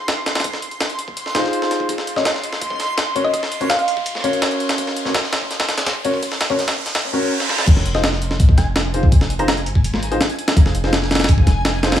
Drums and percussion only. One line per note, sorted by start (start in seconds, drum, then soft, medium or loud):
0.08 snare loud
0.08 closed hi-hat medium
0.26 snare loud
0.26 closed hi-hat medium
0.35 snare medium
0.35 closed hi-hat medium
0.40 snare medium
0.40 closed hi-hat medium
0.44 kick loud
0.44 closed hi-hat medium
0.53 snare medium
0.62 closed hi-hat medium
0.71 closed hi-hat soft
0.80 snare loud
0.80 closed hi-hat medium
0.90 closed hi-hat soft
0.99 closed hi-hat medium
1.08 kick medium
1.17 closed hi-hat medium
1.26 snare soft
1.35 snare loud
1.35 closed hi-hat medium
1.44 snare soft
1.53 closed hi-hat medium
1.62 snare soft
1.71 snare soft
1.71 closed hi-hat medium
1.80 kick medium
1.89 kick loud
1.89 closed hi-hat medium
1.98 snare soft
2.07 closed hi-hat medium
2.16 snare soft
2.25 snare loud
2.25 closed hi-hat medium
2.34 snare soft
2.43 closed hi-hat medium
2.53 snare soft
2.61 kick loud
2.61 closed hi-hat medium
2.70 kick medium
2.80 snare soft
2.80 closed hi-hat medium
2.98 snare loud
2.98 closed hi-hat medium
3.16 closed hi-hat medium
3.25 kick medium
3.34 kick loud
3.34 closed hi-hat medium
3.43 snare medium
3.52 closed hi-hat medium
3.61 closed hi-hat soft
3.70 snare loud
3.70 closed hi-hat medium
3.79 closed hi-hat soft
3.88 closed hi-hat medium
3.97 kick medium
4.06 closed hi-hat medium
4.15 snare soft
4.24 closed hi-hat medium
4.33 closed hi-hat soft
4.42 snare loud
4.42 closed hi-hat medium
4.51 closed hi-hat soft
4.60 closed hi-hat medium
4.69 snare loud
4.69 closed hi-hat medium
4.78 kick loud
4.78 closed hi-hat medium
4.87 snare soft
4.96 closed hi-hat medium
5.05 snare soft
5.14 snare loud
5.14 closed hi-hat medium
5.24 snare soft
5.33 snare loud
5.33 closed hi-hat medium
5.41 kick medium
5.51 snare soft
5.51 closed hi-hat medium
5.60 snare loud
5.60 closed hi-hat medium
5.68 snare loud
5.68 closed hi-hat medium
5.78 snare loud
5.78 closed hi-hat medium
5.87 snare loud
5.87 closed hi-hat medium
6.05 closed hi-hat medium
6.14 kick loud
6.23 kick loud
6.23 closed hi-hat medium
6.32 snare medium
6.41 snare loud
6.41 closed hi-hat medium
6.50 kick medium
6.59 snare soft
6.59 closed hi-hat medium
6.68 snare loud
6.68 closed hi-hat medium
6.77 kick medium
6.86 snare soft
6.86 closed hi-hat medium
6.95 snare loud
6.95 closed hi-hat medium
7.40 snare medium
7.49 snare medium
7.58 snare medium
7.67 kick loud
7.67 closed hi-hat medium
7.67 crash medium
7.77 snare soft
7.86 closed hi-hat medium
7.95 snare soft
8.04 snare loud
8.04 closed hi-hat medium
8.13 snare soft
8.22 closed hi-hat medium
8.31 snare medium
8.40 kick loud
8.40 closed hi-hat medium
8.49 kick loud
8.58 snare soft
8.58 closed hi-hat medium
8.76 snare loud
8.76 closed hi-hat medium
8.94 closed hi-hat medium
9.03 kick medium
9.12 kick loud
9.12 closed hi-hat medium
9.21 snare medium
9.30 closed hi-hat medium
9.39 closed hi-hat soft
9.48 snare loud
9.48 closed hi-hat medium
9.57 closed hi-hat soft
9.66 closed hi-hat medium
9.75 kick loud
9.84 closed hi-hat medium
9.94 snare soft
10.03 closed hi-hat medium
10.12 closed hi-hat soft
10.21 snare loud
10.21 closed hi-hat medium
10.30 closed hi-hat soft
10.39 closed hi-hat medium
10.48 snare loud
10.48 closed hi-hat medium
10.57 kick loud
10.57 closed hi-hat medium
10.66 snare soft
10.75 closed hi-hat medium
10.84 snare soft
10.93 snare loud
10.93 closed hi-hat medium
11.02 snare soft
11.11 snare medium
11.11 closed hi-hat medium
11.15 snare medium
11.15 closed hi-hat medium
11.20 snare medium
11.20 closed hi-hat medium
11.24 snare medium
11.24 closed hi-hat medium
11.29 kick loud
11.29 closed hi-hat medium
11.38 kick loud
11.47 snare soft
11.47 closed hi-hat medium
11.65 snare loud
11.65 closed hi-hat medium
11.83 snare loud
11.83 closed hi-hat medium
11.92 snare medium
11.92 closed hi-hat medium
11.97 snare medium
11.97 closed hi-hat medium